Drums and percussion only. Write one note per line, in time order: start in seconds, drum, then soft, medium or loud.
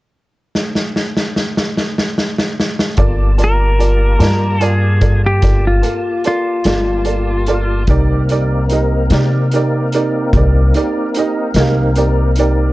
0.55 snare medium
0.75 snare medium
0.96 snare medium
1.17 snare medium
1.36 snare medium
1.57 snare medium
1.77 snare medium
1.98 snare medium
2.18 snare medium
2.38 snare medium
2.60 snare medium
2.79 snare medium
2.97 kick medium
2.97 closed hi-hat medium
3.38 closed hi-hat soft
3.80 closed hi-hat soft
4.20 snare medium
4.20 closed hi-hat medium
4.61 closed hi-hat soft
5.01 kick medium
5.01 closed hi-hat medium
5.42 kick medium
5.42 snare soft
5.42 closed hi-hat medium
5.83 closed hi-hat soft
6.24 closed hi-hat soft
6.64 snare medium
6.64 closed hi-hat medium
7.05 closed hi-hat soft
7.46 closed hi-hat soft
7.87 kick medium
7.87 closed hi-hat medium
8.29 closed hi-hat soft
8.69 closed hi-hat soft
9.10 snare medium
9.10 closed hi-hat medium
9.51 closed hi-hat soft
9.92 closed hi-hat medium
10.33 kick medium
10.33 closed hi-hat medium
10.74 closed hi-hat soft
11.14 closed hi-hat medium
11.54 snare medium
11.54 closed hi-hat medium
11.95 closed hi-hat medium
12.36 closed hi-hat medium